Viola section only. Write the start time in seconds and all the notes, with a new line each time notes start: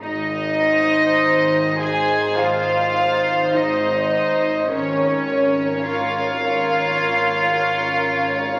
0.63 D#4 C5
1.80 D#4 C5
2.97 D#4 C5
4.13 D#4 C5
4.71 C#4 A#4
5.29 C#4 A#4
6.42 C#4 A#4
7.54 C#4 A#4